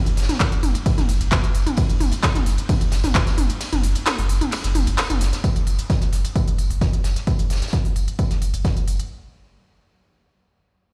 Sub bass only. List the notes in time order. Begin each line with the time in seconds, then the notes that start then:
0.06 F#1
0.17 F#1
0.52 F#1
0.63 F#1
0.98 F#1
1.09 F#1
1.21 F#1
1.44 F#1
1.55 F#1
1.89 F#1
2.00 F#1
2.35 F#1
2.46 F#1
2.81 F#1
2.92 F#1
3.04 F#1
3.27 F#1
3.38 F#1
3.73 F#1
3.84 F#1
4.18 F#1
4.29 F#1
4.64 F#1
4.75 F#1
4.87 F#1
5.10 F#1
5.21 F#1
5.56 F#1
5.67 F#1
6.02 F#1
6.13 F#1
6.48 F#1
6.58 F#1
6.70 F#1
6.93 F#1
7.04 F#1
7.39 F#1
7.50 F#1
7.85 F#1
7.96 F#1
8.31 F#1
8.42 F#1
8.54 F#1
8.77 F#1
8.88 F#1